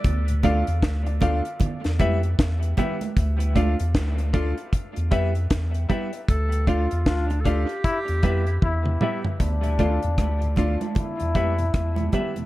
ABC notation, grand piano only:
X:1
M:4/4
L:1/16
Q:"Swing 16ths" 1/4=77
K:Ddor
V:1 name="Grand piano"
z2 [FAdf] z2 [df] [FAdf] z3 [EGBe] z3 [EGBe] [Be] | z2 [FAdf] z2 [df] [FAdf] z3 [EGBe] z3 [EGBe] [Be] | z2 [FAdf] z2 [df] [FAdf] z3 [EGBe] z3 [EGBe] [Be] | z2 [FAdf] z3 [FAdf] z3 [EGBe] z3 [EGBe] z |]